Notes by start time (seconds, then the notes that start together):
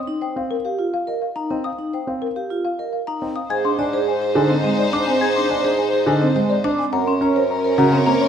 Already playing: D#5 D#6
0.07 D#4
0.22 C5 G5
0.36 C4 F5
0.51 A#4
0.65 G4 F5
0.79 F4
0.94 F5
1.07 A#4 D#5
1.22 F5
1.36 D#4 A#5
1.50 C4 D#5
1.64 F5 D#6
1.79 D#4
1.93 C5 G5
2.07 C4 F5
2.22 A#4
2.36 G4 F5
2.50 F4
2.65 F5
2.79 A#4 D#5
2.93 F5
3.07 D#4 A#5
3.22 C4 D#5
3.36 F5 D#6
3.49 G#2 D#4 G#4 C5 G#5 G#6
3.65 D4 C6
3.79 D4 C5 D5 G#5
3.93 G#4 C5
4.08 C5 G#5
4.22 G#4 C5
4.35 D3 D#4 D#5 G#5
4.40 C5
4.50 C4 D#5
4.64 G#3 C5 G#5
4.69 C5
4.78 D5
4.93 D4 D#5 D6
4.99 C5
5.07 C4 G#5
5.21 G#4 G#5 G#6
5.29 C5
5.36 D4 C6
5.50 D4 D5 G#5
5.59 C5
5.64 G#4 C5
5.79 G#5
5.89 C5
5.93 G#4 C5
6.06 D3 D#4 D#5 G#5
6.19 C4 C5 D#5
6.35 G#3 C5 G#5
6.48 C5 D5
6.64 D4 D#5 D6
6.79 C4 G#5
6.92 F#2 C#4 A#4 F#5 A#5
7.07 C#4 C6
7.21 C#4 A#4 C#5 A#5
7.36 A#4 C5
7.50 A#4 A#5
7.64 A#4 C5
7.78 C#3 F#4 F#5 A#5
7.82 A#4
7.92 C4 F#5
8.06 A#3 C5 A#5
8.12 A#4
8.21 C4 C#5